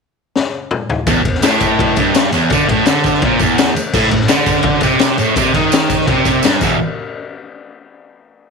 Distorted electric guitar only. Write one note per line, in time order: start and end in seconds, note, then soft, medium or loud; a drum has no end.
1.08 1.22 E2 loud
1.24 1.39 E2 medium
1.43 1.96 A2 loud
1.98 2.32 G2 loud
2.32 2.50 E2 loud
2.52 2.69 D3 loud
2.69 2.86 A2 loud
2.87 3.22 D3 loud
3.24 3.40 A#2 loud
3.40 3.75 E2 loud
3.76 muted distorted electric guitar stroke medium
3.95 4.11 A2 loud
4.12 4.29 A2 medium
4.29 4.82 D3 loud
4.83 5.18 C3 loud
5.19 5.36 A2 loud
5.37 5.54 C3 loud
5.55 6.07 D#3 loud
6.08 6.43 C3 loud
6.44 6.61 G2 loud
6.62 6.76 E2 medium
6.62 6.76 B2 medium
6.62 6.77 E3 medium